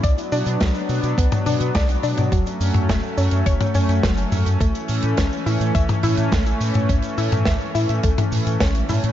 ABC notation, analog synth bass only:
X:1
M:4/4
L:1/16
Q:1/4=105
K:A
V:1 name="Analog synth bass" clef=bass
B,,, z B,, B,, B,,, z B,, B,, B,,, z B,, B,, B,,, z B,, B,, | F,,, z F,, F,, F,,, z F,, F,, F,,, z F,, F,, F,,, z F,, F,, | A,,, z A,, A,, A,,, z A,, A,, A,,, z A,, A,, A,,, z A,, A,, | A,,, z A,, A,, A,,, z A,, A,, A,,, z A,, A,, A,,, z A,, A,, |]